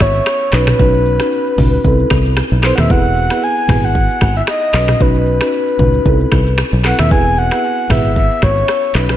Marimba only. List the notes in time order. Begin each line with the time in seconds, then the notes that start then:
0.53 C#4 D#4 F#4 B4
0.79 C#4 D#4 F#4 B4
1.20 C#4 D#4 F#4 B4
1.58 C#4 D#4 F#4 B4
1.85 C4 E4 A4 B4
2.63 C4 E4 A4 B4
2.90 B3 E4 G#4 B4
3.31 B3 E4 G#4 B4
3.69 B3 E4 G#4 B4
4.74 C#4 D#4 F#4 B4
5.00 C#4 D#4 F#4 B4
5.41 C#4 D#4 F#4 B4
5.79 C#4 D#4 F#4 B4
6.06 C4 E4 A4 B4
6.85 C4 E4 A4 B4
7.11 B3 E4 G#4 B4
7.51 B3 E4 G#4 B4
7.90 B3 E4 G#4 B4
8.95 C#4 D#4 F#4 B4